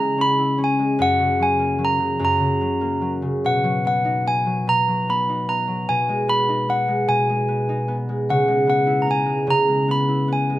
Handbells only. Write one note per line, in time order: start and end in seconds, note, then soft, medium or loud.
0.00 0.18 A#5 medium
0.21 0.57 B5 medium
0.64 1.03 G#5 medium
1.02 1.42 F#5 medium
1.43 1.83 G#5 medium
1.85 2.23 A#5 medium
2.25 3.11 A#5 medium
3.46 3.86 F#5 medium
3.87 4.24 F#5 medium
4.28 4.65 G#5 medium
4.69 5.10 A#5 medium
5.10 5.50 B5 medium
5.49 5.86 A#5 medium
5.89 6.26 G#5 medium
6.29 6.70 B5 medium
6.70 7.07 F#5 medium
7.09 7.95 G#5 medium
8.30 8.67 F#5 medium
8.70 9.03 F#5 medium
9.02 9.09 A#5 medium
9.11 9.51 G#5 medium
9.51 9.69 A#5 medium
9.91 10.09 B5 medium
10.33 10.59 G#5 medium